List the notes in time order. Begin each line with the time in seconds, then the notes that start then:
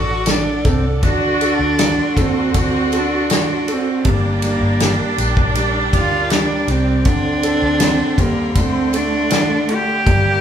Already playing: A1 D4 F#4 A4 D5 F#5 D6
0.26 D4, snare, ride, tambourine
0.30 D4
0.64 C2 C4 A4, kick, ride, tambourine
1.02 D2 D4 F#4 F#5 C6, kick, ride, tambourine
1.41 A4, ride, tambourine
1.59 D2
1.79 D4 F#4, snare, ride, tambourine
2.17 D#2 C4 A4, kick, ride, tambourine
2.54 D2 C4 D4, kick, ride, tambourine
2.92 A4, ride, tambourine
2.98 D4
3.30 D4, snare, ride, tambourine
3.35 D4
3.68 A4, ride, tambourine
3.72 C4
4.05 G1 G3 D4 A#4 D5 G5 D6, kick, ride
4.09 A#3
4.42 G3, ride, tambourine
4.61 G1
4.80 G3, snare, ride, tambourine
5.18 A#1 G3, ride, tambourine
5.37 kick
5.55 G3, ride, tambourine
5.93 D2 G3 F4, kick, ride, tambourine
6.30 G3 D4, snare, ride, tambourine
6.68 C2 G3 C4, ride, tambourine
7.05 D2 D3 C4 D4 A4 G5 C6, kick, ride, tambourine
7.43 A4, ride, tambourine
7.62 D2
7.80 D3, snare, ride, tambourine
8.18 D#2 G3 A#3, kick, ride, tambourine
8.55 D2 D3 A3 A4 F#5, kick, ride, tambourine
8.60 C4
8.93 A3 D4, ride, tambourine
9.30 D3, snare, ride, tambourine
9.69 A3 G4, ride
10.05 G1 G3 A#3 G4 D5 F5 A#5, kick, ride, tambourine